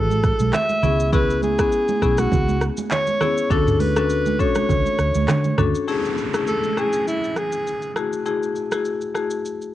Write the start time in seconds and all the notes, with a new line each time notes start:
Already playing: A1 A4
0.10 high conga, shaker
0.23 kick, cross-stick, shaker
0.39 B1, high conga, shaker
0.53 E5, cross-stick, clap, low conga, shaker
0.69 high conga, shaker
0.83 C#2 B3 C#4 E4 G#4, low conga, shaker
1.00 shaker
1.12 B3 C#4 E4 G#4 B4, kick, low conga, shaker
1.30 shaker
1.42 G#4, high conga, shaker
1.59 B3 C#4 E4 G#4, kick, cross-stick, shaker
1.72 shaker
1.88 high conga, shaker
2.02 B1 B3 C#4 E4 G#4, kick, cross-stick, shaker
2.17 F#4, cross-stick, high conga, shaker
2.32 C#2, kick, low conga, shaker
2.48 high conga, shaker
2.61 cross-stick, shaker
2.77 high conga, shaker
2.91 C#5, clap, low conga, shaker
3.07 high conga, shaker
3.20 B3 C#4 E4 G#4, cross-stick, low conga, shaker
3.37 shaker
3.50 D2 C#4 D4 F#4 A4, kick, low conga, shaker
3.67 mid tom, shaker
3.80 B4, open hi-hat, high conga, shaker
3.96 C#4 D4 F#4 A4, cross-stick, shaker
4.10 shaker
4.26 high conga, shaker
4.39 B1 C#4 D4 F#4 A4 C#5, kick, shaker
4.55 cross-stick, high conga, shaker
4.69 C#2, kick, low conga, shaker
4.86 high conga, shaker
4.99 D2, cross-stick, shaker
5.15 D2, high conga, shaker
5.28 D3, cross-stick, clap, low conga, shaker
5.44 high conga, shaker
5.58 D2 C#4 D4 F#4 A4, cross-stick, mid tom, low conga, shaker
5.75 shaker
5.88 A3 C#4 E4 G#4, downlifter, shaker
6.05 shaker
6.18 shaker
6.34 A3 C#4 E4 G#4, cross-stick, shaker
6.47 A4, shaker
6.63 shaker
6.77 A3 C#4 E4 G#4, cross-stick, shaker
6.93 shaker
7.08 E4, shaker
7.24 shaker
7.36 G#4, cross-stick, shaker
7.52 shaker
7.67 shaker
7.82 shaker
7.96 A3 E4 F#4 G#4, cross-stick, shaker
8.13 shaker
8.25 A3 E4 F#4 G#4, shaker
8.43 shaker
8.55 shaker
8.71 A3 E4 F#4 G#4, cross-stick, shaker
8.85 shaker
9.01 shaker
9.15 A3 E4 F#4 G#4, cross-stick, shaker
9.30 shaker
9.45 shaker
9.61 shaker